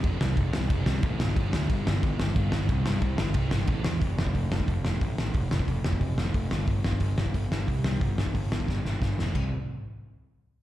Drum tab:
CC |x---x---x---x---|x---x---x---x---|x---x---x---x---|----------------|
HH |----------------|----------------|----------------|o---o---o---o---|
SD |--o---o---o---o-|--o---o---o---o-|--o---o---o---o-|--o---o---o---o-|
BD |o---o---o---o---|o---o---o---o---|o---o---o---o---|o--oo--oo---o---|

CC |----------------|----------------|----------------|x---------------|
HH |o---o---o---o---|o---o---o---o---|o---o-----------|----------------|
SD |--o---o---o---o-|--o---o---o---o-|--o---o-o-o-o-o-|----------------|
BD |o--oo--oo---o---|o--oo--oo---o---|o--oo--oo---o---|o---------------|